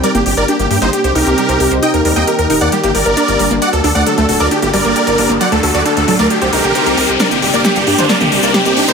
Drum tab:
HH |xxoxxxoxxxoxxxox|xxoxxxoxxxoxxxox|xxoxxxoxxxoxxxox|xxoxxxoxxxoxxxox|
SH |----------------|----------------|----------------|----------------|
SD |----------------|----------------|----------------|----------------|
T2 |----------------|----------------|----------------|----------------|

HH |xxoxxxoxxxoxxxo-|
SH |xx-xxx-xxx-xxx-x|
SD |o---o---o---o---|
T2 |-------o-o------|